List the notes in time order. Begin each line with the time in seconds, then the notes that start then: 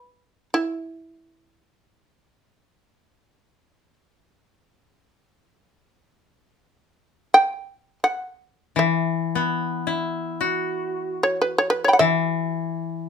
Already playing: B4
0.54 E4
7.34 G5
8.04 F#5
8.76 E3 E5
9.35 B3
9.87 E4
10.41 F#4
11.23 C#5
11.41 B4
11.58 C#5
11.70 B4
11.84 C#5 B5
11.89 G5
11.93 F#5
11.99 E3 E5